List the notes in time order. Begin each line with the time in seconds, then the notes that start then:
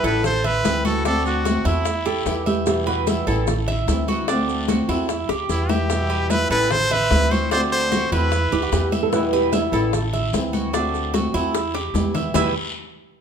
0.04 A1 E3 G3 B3 E4 A4 B4, high conga, short guiro, maracas
0.23 C5, muted nylon-string guitar stroke, high bongo, high conga, low conga, long guiro, maracas
0.44 B4 E5, high bongo, high conga, low conga, maracas
0.64 D2 E3 G3 C4 E4, high bongo, low bongo, high conga, short guiro, maracas
0.85 F#4 A4, high bongo, high conga, short guiro, maracas
1.04 D3 A3 C4 D4 F#4 A4, high bongo, high conga, long guiro, maracas
1.25 F#4, high bongo, high conga, maracas
1.45 D3 A3 C4 F#4, high bongo, high conga, short guiro, maracas
1.65 E2 A3 C4 E4 F#4, high conga, short guiro, maracas
1.85 muted nylon-string guitar stroke, high bongo, high conga, long guiro, maracas
2.06 G4 A4, high bongo, high conga, maracas
2.26 E2 E3 G3 B3 E4, high bongo, low bongo, high conga, short guiro, maracas
2.46 G4 E5, high bongo, high conga, short guiro, maracas
2.66 B2 E3 G3 B3 E4 G4, high bongo, high conga, long guiro, maracas
2.87 F#4 B4, high bongo, high conga, maracas
3.07 E3 G3 B3 E4 E5, high bongo, high conga, short guiro, maracas
3.27 A1 E3 G3 B3 E4 A4, high conga, short guiro, maracas
3.47 muted nylon-string guitar stroke, high bongo, high conga, low conga, long guiro, maracas
3.68 E5, high bongo, high conga, low conga, maracas
3.87 D2 E3 G3 C4 E4, high bongo, low bongo, high conga, short guiro, maracas
4.08 F#4, high bongo, high conga, short guiro, maracas
4.28 D3 A3 C4 D4 F#4, high bongo, long guiro, maracas
4.48 high bongo, high conga, maracas
4.68 D3 A3 C4 F#4, high bongo, high conga, short guiro, maracas
4.88 E2 A3 C4 E4 F#4, high conga, short guiro, maracas
5.09 muted nylon-string guitar stroke, high bongo, high conga, long guiro, maracas
5.29 D2 G4, high bongo, high conga, maracas
5.49 E2 E3 G3 B3 E4, high bongo, high conga, short guiro, maracas
5.69 G4 E5, low bongo, high conga, short guiro, maracas
5.90 B2 E3 G3 B3 E4, high bongo, long guiro, maracas
6.10 B4, high bongo, high conga, maracas
6.30 E3 G3 B3 E4 B4 E5, high bongo, high conga, short guiro, maracas
6.50 A1 E3 G3 B3 E4 A4 B4, high conga, short guiro, maracas
6.71 C5, muted nylon-string guitar stroke, high bongo, high conga, low conga, long guiro, maracas
6.91 B4 E5, high bongo, high conga, low conga, maracas
7.11 D2 E3 G3 C4 E4, high bongo, low bongo, high conga, short guiro, maracas
7.31 F#4 C5, high bongo, high conga, short guiro, maracas
7.51 D3 A3 C4 D4 F#4 C5, high bongo, high conga, long guiro, maracas
7.72 C5, high bongo, high conga, maracas
7.91 D3 A3 C4 F#4, high bongo, high conga, short guiro, maracas
8.12 E2 A3 C4 E4 F#4 B4, high conga, short guiro, maracas
8.32 muted nylon-string guitar stroke, high bongo, high conga, long guiro, maracas
8.52 D2 E4 G4, high bongo, high conga, maracas
8.62 F#4
8.72 E2 E3 G3 B3 E4 G4, high bongo, low bongo, high conga, short guiro, maracas
8.92 E5, high bongo, high conga, short guiro, maracas
9.03 A4
9.12 B2 E3 G3 B3 E4 B4, high bongo, high conga, long guiro, maracas
9.33 G4 B4, high bongo, high conga, maracas
9.53 E3 G3 B3 E4 E5, high bongo, high conga, short guiro, maracas
9.72 A1 E3 G3 B3 E4 A4, high conga, short guiro, maracas
9.93 muted nylon-string guitar stroke, high bongo, high conga, low conga, long guiro, maracas
10.13 E5, high bongo, high conga, low conga, maracas
10.33 D2 E3 G3 C4 E4, high bongo, low bongo, high conga, short guiro, maracas
10.53 F#4, high bongo, high conga, short guiro, maracas
10.73 D3 A3 C4 D4 F#4, high bongo, high conga, long guiro, maracas
10.94 high bongo, high conga, maracas
11.14 D3 A3 C4 F#4, high bongo, high conga, short guiro, maracas
11.34 E2 A3 C4 E4 F#4, high conga, short guiro, maracas
11.54 muted nylon-string guitar stroke, high bongo, high conga, long guiro, maracas
11.74 G4, high bongo, high conga, maracas
11.94 E2 E3 G3 B3 E4, low bongo, high conga, short guiro, maracas
12.15 E5, low bongo, low conga, short guiro, maracas
12.34 E2 B2 E3 G3 B3 E4 G4 B4 E5, low bongo, low conga, long guiro, maracas